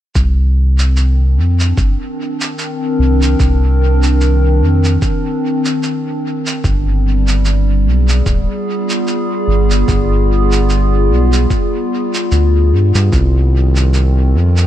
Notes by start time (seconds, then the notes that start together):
0.15 C2 D#3, kick, shaker
0.50 C4
0.79 D4, shaker
0.96 shaker
1.37 F2
1.60 shaker
1.77 G1, kick, shaker
2.06 A#4
2.41 shaker
2.58 shaker
2.99 C2
3.22 shaker
3.40 C2, kick, shaker
4.03 shaker
4.21 shaker
4.62 F2
4.84 shaker
5.02 kick, shaker
5.65 shaker
5.83 shaker
6.46 shaker
6.64 G1 G3, kick, shaker
7.28 shaker
7.45 shaker
7.54 B3
7.73 G#4
7.86 B1
8.09 shaker
8.26 D1, kick, shaker
8.32 F4
8.90 shaker
9.07 shaker
9.48 G1
9.71 shaker
9.88 G1, kick, shaker
10.52 shaker
10.69 shaker
11.10 B1
11.33 shaker
11.50 kick, shaker
12.14 shaker
12.31 D2, shaker
12.72 G2
12.95 G2, shaker
13.12 C2 D#3, kick, shaker
13.35 C4
13.76 shaker
13.94 shaker
14.26 D4
14.34 F2
14.57 A#4, shaker